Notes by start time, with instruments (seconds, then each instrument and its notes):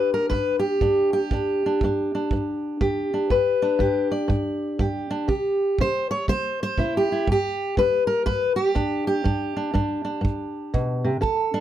Already playing: steel-string acoustic guitar G2 D4 G4 B4
0.14 steel-string acoustic guitar A#4
0.30 steel-string acoustic guitar G2 B4, kick
0.59 steel-string acoustic guitar G4
0.81 steel-string acoustic guitar G2 D4, kick
1.13 steel-string acoustic guitar G4
1.31 steel-string acoustic guitar G2 D4, kick
1.66 steel-string acoustic guitar D4
1.81 steel-string acoustic guitar G2 D4, kick
2.15 steel-string acoustic guitar D4
2.31 steel-string acoustic guitar G2, kick
2.81 steel-string acoustic guitar G2 G4, kick
3.14 steel-string acoustic guitar D4
3.30 steel-string acoustic guitar G2 B4, kick
3.62 steel-string acoustic guitar D4
3.79 steel-string acoustic guitar G2 G4, kick
4.11 steel-string acoustic guitar D5
4.28 steel-string acoustic guitar G2, kick
4.79 steel-string acoustic guitar G2 G4, kick
5.11 steel-string acoustic guitar D4
5.28 steel-string acoustic guitar C3 G4, kick
5.79 steel-string acoustic guitar C3 C5, kick
6.11 steel-string acoustic guitar C#5
6.28 steel-string acoustic guitar C3 C5, kick
6.63 steel-string acoustic guitar C5
6.78 steel-string acoustic guitar C3 E4, kick
6.97 steel-string acoustic guitar G4
7.12 steel-string acoustic guitar E4
7.27 steel-string acoustic guitar G2, kick
7.32 steel-string acoustic guitar G4
7.77 steel-string acoustic guitar G2 B4, kick
8.07 steel-string acoustic guitar A#4
8.26 steel-string acoustic guitar G2 B4, kick
8.56 steel-string acoustic guitar G4
8.75 steel-string acoustic guitar G2 D4, kick
9.07 steel-string acoustic guitar G4
9.24 steel-string acoustic guitar G2 D4, kick
9.57 steel-string acoustic guitar D4
9.74 steel-string acoustic guitar G2 D4, kick
10.05 steel-string acoustic guitar D4
10.21 steel-string acoustic guitar G2, kick
10.74 steel-string acoustic guitar B2, kick
11.04 steel-string acoustic guitar C3
11.21 steel-string acoustic guitar D3 A4, kick
11.54 steel-string acoustic guitar D4